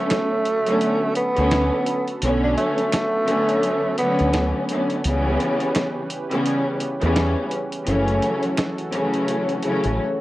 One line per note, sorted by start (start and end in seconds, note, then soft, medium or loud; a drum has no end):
0.00 0.38 D3 medium
0.00 5.00 D3 medium
0.00 0.38 F#3 loud
0.00 0.38 A3 medium
0.00 1.12 A3 medium
0.00 0.39 B3 medium
0.00 5.00 B3 medium
0.00 0.39 C#4 loud
0.00 5.00 F#4 medium
0.00 5.00 A4 medium
0.10 finger snap medium
0.10 snare loud
0.10 snare medium
0.10 closed hi-hat loud
0.45 closed hi-hat medium
0.65 1.12 D3 medium
0.65 1.12 F#3 medium
0.65 1.13 A3 medium
0.65 1.13 B3 medium
0.65 1.13 C#4 loud
0.65 closed hi-hat medium
0.81 closed hi-hat medium
1.15 2.18 B3 loud
1.15 closed hi-hat medium
1.35 1.69 D2 medium
1.35 1.82 D3 loud
1.35 1.83 F#3 medium
1.35 1.83 A3 medium
1.35 1.83 B3 medium
1.35 1.84 C#4 loud
1.35 closed hi-hat soft
1.51 finger snap medium
1.51 snare loud
1.51 closed hi-hat medium
1.86 closed hi-hat medium
2.08 closed hi-hat medium
2.22 2.54 B1 loud
2.22 3.05 D3 loud
2.22 3.05 F#3 loud
2.22 3.06 A3 medium
2.22 3.06 B3 medium
2.22 3.06 C#4 loud
2.22 closed hi-hat loud
2.44 2.57 D4 medium
2.57 3.94 A3 medium
2.57 closed hi-hat medium
2.78 closed hi-hat soft
2.92 finger snap medium
2.92 snare loud
2.92 snare medium
2.92 closed hi-hat loud
3.26 3.93 D3 loud
3.26 3.93 F#3 medium
3.26 3.94 A3 medium
3.26 3.94 B3 medium
3.26 3.94 C#4 loud
3.26 closed hi-hat medium
3.49 closed hi-hat medium
3.63 closed hi-hat medium
3.97 4.64 D3 loud
3.97 4.64 F#3 medium
3.97 4.64 A3 medium
3.97 4.51 B3 medium
3.97 4.65 B3 medium
3.97 4.65 C#4 loud
3.97 closed hi-hat medium
4.19 4.52 D2 medium
4.19 closed hi-hat soft
4.33 finger snap medium
4.33 snare loud
4.33 closed hi-hat medium
4.69 5.02 D3 medium
4.69 5.03 F#3 medium
4.69 5.03 A3 medium
4.69 5.03 B3 medium
4.69 5.04 C#4 medium
4.69 closed hi-hat medium
4.90 closed hi-hat medium
5.04 5.36 C#2 loud
5.04 6.03 C#3 loud
5.04 10.21 E3 medium
5.04 6.04 E3 medium
5.04 6.04 G3 medium
5.04 6.04 B3 loud
5.04 10.21 C#4 medium
5.04 6.05 C#4 loud
5.04 7.84 G4 medium
5.04 7.84 B4 medium
5.04 closed hi-hat loud
5.40 closed hi-hat medium
5.60 closed hi-hat medium
5.75 finger snap medium
5.75 snare loud
5.75 snare medium
5.75 closed hi-hat loud
6.10 closed hi-hat medium
6.30 6.77 C#3 loud
6.30 6.77 E3 medium
6.30 6.77 G3 medium
6.30 6.78 B3 medium
6.30 6.78 C#4 loud
6.30 closed hi-hat medium
6.46 closed hi-hat medium
6.80 closed hi-hat medium
7.00 7.34 E2 medium
7.00 7.47 C#3 loud
7.00 7.48 E3 medium
7.00 7.48 G3 medium
7.00 7.48 B3 medium
7.00 7.49 C#4 loud
7.00 closed hi-hat soft
7.16 finger snap medium
7.16 snare loud
7.16 closed hi-hat medium
7.51 closed hi-hat medium
7.72 closed hi-hat medium
7.85 8.19 F#1 loud
7.85 8.69 C#3 loud
7.85 8.70 E3 medium
7.85 8.70 F#3 medium
7.85 8.70 A3 medium
7.85 8.71 C#4 loud
7.85 10.21 F#4 medium
7.85 10.21 A4 medium
7.85 closed hi-hat loud
8.08 closed hi-hat soft
8.22 closed hi-hat medium
8.43 closed hi-hat medium
8.57 finger snap medium
8.57 snare loud
8.57 snare medium
8.57 closed hi-hat loud
8.78 closed hi-hat soft
8.91 9.58 C#3 medium
8.91 9.58 E3 medium
8.91 9.58 F#3 medium
8.91 9.59 A3 medium
8.91 9.59 C#4 loud
8.91 closed hi-hat medium
9.14 closed hi-hat medium
9.28 closed hi-hat medium
9.49 closed hi-hat soft
9.62 9.98 C#3 loud
9.62 9.98 E3 medium
9.62 9.99 F#3 medium
9.62 9.99 A3 medium
9.62 9.99 C#4 loud
9.62 closed hi-hat medium
9.84 9.98 A1 medium
9.84 closed hi-hat soft